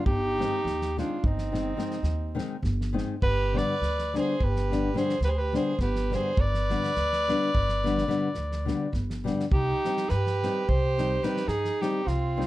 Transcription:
0.06 upright bass G1, violin D#4, alto saxophone G4, kick
0.39 nylon-string guitar D#3 G#3 C4 D#4, snare
0.65 upright bass D#2, snare
0.82 snare
0.97 nylon-string guitar D#3 G#3 C4 D#4, violin D4, alto saxophone F4, snare
1.24 upright bass G1, violin C4, alto saxophone D#4, kick
1.38 snare
1.52 nylon-string guitar D#3 G#3 C4 D#4, snare
1.77 nylon-string guitar D#3 G#3 C4 D#4, snare
1.91 snare
2.03 upright bass D#2, snare
2.35 nylon-string guitar D#3 G#3 C4 D#4, snare
2.62 upright bass G1, kick, snare
2.81 snare
2.93 nylon-string guitar D#3 G#3 C4 D#4
2.98 snare
3.22 upright bass G1, violin G4, alto saxophone B4, kick
3.53 nylon-string guitar D3 G3 B3 D4
3.57 violin B4, alto saxophone D5, snare
3.81 upright bass D2, snare
3.99 snare
4.13 nylon-string guitar D3 G3 B3 D4, snare
4.17 violin G#4, alto saxophone C5
4.40 upright bass G1, violin G4, alto saxophone B4, kick
4.56 snare
4.70 nylon-string guitar D3 G3 B3 D4, snare
4.94 nylon-string guitar D3 G3 B3 D4, violin G#4, alto saxophone C5, snare
5.09 snare
5.20 upright bass D2, violin G4, alto saxophone B4, snare
5.27 violin G#4, alto saxophone C5
5.37 violin G4, alto saxophone B4
5.53 nylon-string guitar D3 G3 B3 D4, alto saxophone C5, snare
5.57 violin G#4
5.79 upright bass G1, violin G4, alto saxophone B4, kick, snare
5.96 snare
6.10 nylon-string guitar D3 G3 B3 D4, alto saxophone C5, snare
6.15 violin G#4
6.37 upright bass G1, violin B4, alto saxophone D5, kick
6.54 snare
6.70 nylon-string guitar D3 G3 B3 D4, snare
6.84 snare
6.96 upright bass D2, snare
7.13 snare
7.28 nylon-string guitar D3 G3 B3 D4, snare
7.54 upright bass G1, kick
7.69 snare
7.84 nylon-string guitar D3 G3 B3 D4, snare
7.98 snare
8.08 nylon-string guitar D3 G3 B3 D4, snare
8.34 upright bass D2, snare
8.52 snare
8.65 nylon-string guitar D3 G3 B3 D4, snare
8.92 upright bass G1, kick, snare
9.10 snare
9.24 nylon-string guitar D3 G3 B3 D4, snare
9.40 snare
9.51 upright bass C2, violin D#4, alto saxophone G4, kick
9.84 nylon-string guitar D#3 G3 C4 D#4, snare
9.97 snare
10.09 upright bass G2, violin G4, alto saxophone B4, snare
10.26 snare
10.43 nylon-string guitar D#3 G3 C4 D#4, snare
10.68 upright bass C2, violin G4, alto saxophone C5, kick
10.98 nylon-string guitar D#3 G3 C4 D#4, snare
11.22 nylon-string guitar D#3 G3 C4 D#4, violin G4, alto saxophone B4, snare
11.37 snare
11.47 upright bass G2, violin D#4, alto saxophone G#4, snare
11.65 snare
11.80 nylon-string guitar D#3 G3 C4 D#4, violin D#4, alto saxophone G4, snare
12.05 upright bass C2, violin C4, alto saxophone F4, snare
12.37 nylon-string guitar D#3 G3 C4 D#4, snare

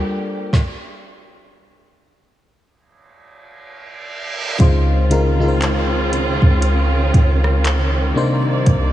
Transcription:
Already playing: string section G3 A#3 G4, fm electric piano G3 D4 F4 A4 A#4 D5
0.53 kick, snare
2.56 reverse cymbal
4.58 808-style bass C#2, fm electric piano C#3 G#3 D#4 F4 C5, string section C#3 D#3 G#3 C4 F4, kick, closed hi-hat
5.09 fm electric piano C#3 G#3 D#4 F4 A#4, closed hi-hat
5.38 fm electric piano C#3 G#3 D#4 F4 A#4
5.48 fm electric piano C5
5.62 clap, closed hi-hat
6.13 closed hi-hat
6.42 808-style bass C#2, kick
6.62 closed hi-hat
7.14 808-style bass C#2, kick, closed hi-hat
7.44 cross-stick
7.65 clap, closed hi-hat
8.14 fm electric piano C3 A#3 D4 D#4 C5, string section C3 G3 A#3 D5
8.66 808-style bass C2, kick, closed hi-hat

